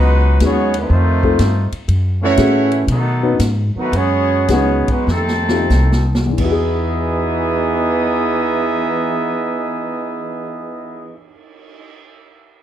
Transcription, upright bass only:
Already playing: C#2
0.41 D#2
0.90 F2
1.39 G2
1.72 muted upright bass stroke
1.88 F#2
2.38 A2
2.88 B2
3.39 G#2
3.76 muted upright bass stroke
3.92 F#2
4.48 C#2
5.07 F2
5.70 C2
6.38 E2

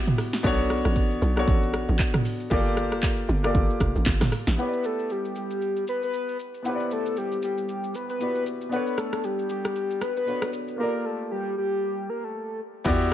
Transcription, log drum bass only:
0.44 B1
0.85 A1
1.22 B1
1.48 A1
1.89 A1
2.51 G1
2.92 F1
3.29 G1
3.55 G1
3.80 F1
3.96 A1
4.06 G1
4.22 G1
4.47 A1
12.86 E2

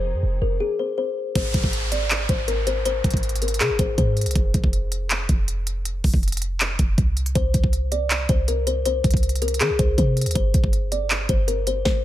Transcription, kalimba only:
Already playing: C5
0.42 A#4
0.60 G#4
0.79 C5
0.98 C5
1.35 C5
1.92 D5
2.29 C5
2.48 A#4
2.67 C5
2.86 C5
3.42 A#4
3.60 G#4
3.79 C5
3.98 C5
7.35 C5
7.92 D5
8.29 C5
8.48 A#4
8.67 C5
8.86 C5
9.42 A#4
9.61 G#4
9.79 C5
9.98 C5
10.35 C5
10.92 D5
11.29 C5
11.48 A#4
11.67 C5
11.85 C5

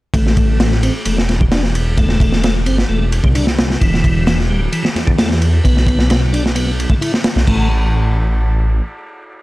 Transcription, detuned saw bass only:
0.14 A1
1.06 E1
2.67 G1
2.89 E1
3.24 C2
3.81 E1
4.50 D1
4.95 E2
5.65 B1
7.36 B1
7.47 A1

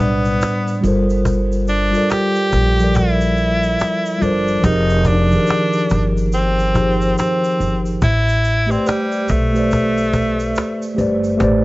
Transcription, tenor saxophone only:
0.00 B3
1.69 D4
2.11 G4
2.96 E4
4.22 D4
4.64 D#4
5.07 D4
6.34 C4
7.18 C4
8.03 E4
8.71 C4
8.88 G3
9.30 A3

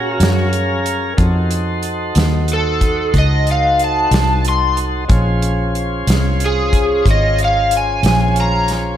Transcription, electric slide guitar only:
Already playing: F#4
2.53 A4
3.18 D#5
3.51 F5
3.84 A5
4.48 C6
6.46 G#4
7.11 D#5
7.44 F5
7.77 G#5
8.40 A#5

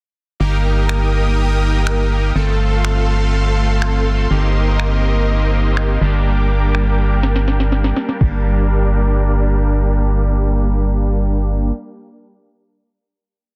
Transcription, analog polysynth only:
0.40 A#3 D#4 G4 A#4
2.35 A3 C4 F4 A4
4.30 A#3 C4 D#4 G4
6.01 G3 A#3 D4 G4
8.21 G3 A#3 D4 G4

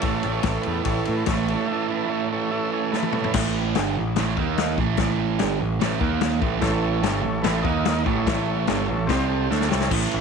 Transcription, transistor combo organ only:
0.00 E4 A4 C#5
0.19 E4 A4 C#5
0.41 E4 A4 C#5
0.60 E4 A4 B4
0.83 E4 A4 C#5
1.07 E4 A4 B4
1.27 E4 A4 C#5
1.47 E4 A4 C#5
1.65 E4 A4 E5
1.89 E4 A4 B4
2.09 E4 A4 C#5
2.32 E4 A4 C#5
2.51 E4 A4 C#5 E5
2.73 E4 A4 C#5 G#5
2.92 E4 A4 B4 A5
3.11 E4 A4 C#5 B5
6.61 E4 A4 C#5
6.82 E4 A4 C#5
7.01 E4 A4 C#5
7.22 E4 A4 C#5
7.41 E4 A4 B4
7.62 D#4 A#4 D#5
8.06 E4 A4 C#5
8.46 E4 A4 C#5
8.68 E4 A4 C#5
8.87 E4 A4 C#5
9.06 C4 G4 C5
9.28 C4 G4 A4
9.50 E4 A4 C#5
9.71 E4 A4 C#5

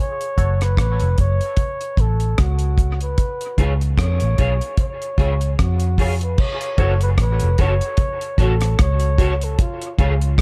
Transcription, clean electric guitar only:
3.58 F4 G#4 C#5
4.38 F4 G#4 C#5
5.18 F4 G#4 C#5
5.99 F4 G#4 C#5
6.79 F#4 A4 C#5
7.58 F#4 A4 C#5
8.39 F#4 A4 C#5
9.18 F#4 A4 C#5
9.99 F4 G#4 C#5

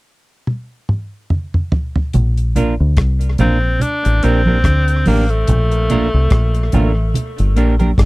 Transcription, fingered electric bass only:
2.15 A#1
2.80 D2
2.98 C2
3.40 A#1
4.06 A1
4.24 A#1
4.65 D2
5.07 A1
5.49 A#1
6.14 C2
6.32 A#1
6.74 A1
7.40 G1
7.57 A#1
7.98 G1

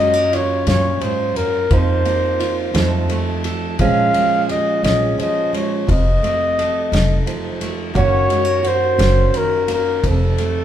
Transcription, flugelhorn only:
Already playing: D#5
0.35 C#5
0.68 C#5
1.02 C5
1.37 A#4
1.73 C5
3.81 F5
4.51 D#5
4.84 D#5
5.22 D#5
5.56 C#5
5.91 D#5
7.98 C#5
8.68 C5
9.37 A#4
9.74 A#4
10.08 A4

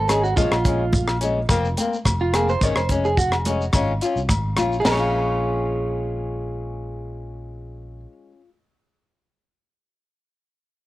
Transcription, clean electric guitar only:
0.10 G#4
0.23 F#4
0.36 F4
2.21 F4
2.35 G#4
2.50 C5
2.63 C#5
2.78 C5
3.05 G#4
3.18 F#4
4.80 G#4
4.86 A#4
4.92 C#5

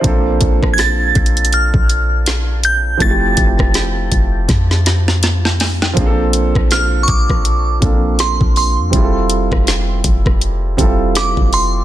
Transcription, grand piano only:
Already playing: C5
0.01 F3 A#3 C4
0.06 D4 A4
2.97 F3 A3 C4
3.02 E4 F#4
3.10 G4
5.93 F3 A#3 C4
5.98 D4 G#4
6.07 A4
7.80 F3 A#3 C4 D4 A4
8.90 G3 C4 E4
8.95 F4 G#4
9.03 A4
10.77 G3 C4 E4 F4 A4

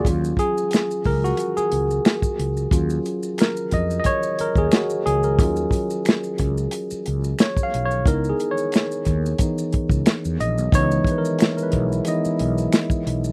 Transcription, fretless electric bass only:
0.05 D#2
1.06 C#2
1.58 muted fretless electric bass stroke
1.72 C#2
2.39 C#2
2.72 D#2
3.73 F2
4.40 muted fretless electric bass stroke
4.56 D#2
5.06 C#2
5.39 D#2
6.40 C#2
6.92 muted fretless electric bass stroke
7.08 C#2
7.74 B1
8.06 C#2
9.07 D#2
9.90 C#2
10.25 E2
10.40 A#1
10.59 B1
10.73 C#2
11.74 B1
12.26 muted fretless electric bass stroke
12.40 B1
13.07 B1

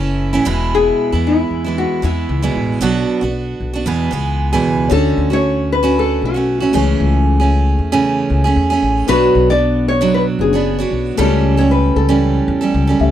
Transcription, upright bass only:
Already playing: F#1
0.46 E1
1.13 E2
1.51 E2
2.03 E2
2.29 C#2
2.55 A1
2.81 B1
3.22 B1
3.60 B1
3.86 E2
4.12 C#2
4.64 C#2
4.91 D2
5.17 D2
6.22 B1
6.74 C#2
7.00 C#2
7.79 E2
8.30 C#2
8.56 E2
8.82 A1
9.08 B1
9.35 B1
10.39 F#1
10.91 B1
11.18 C#2
11.96 C#2
12.48 E2
12.74 C#2
13.00 C#2

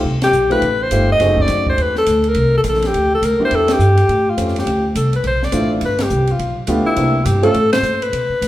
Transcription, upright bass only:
0.05 C2
0.31 B1
0.62 A1
0.92 G1
1.20 F#1
1.49 F#2
1.78 D#2
2.07 D2
2.36 C2
2.64 A#1
2.94 D2
3.22 D2
3.39 muted upright bass stroke
3.51 E2
3.79 G2
4.09 A2
4.38 F2
4.66 D2
4.95 C2
5.24 B1
5.53 A1
5.81 G1
6.10 C2
6.39 B1
6.68 D2
6.85 muted upright bass stroke
6.96 C2
7.25 G2
7.54 A2
7.82 A#2
8.13 B2
8.29 muted upright bass stroke
8.41 A2

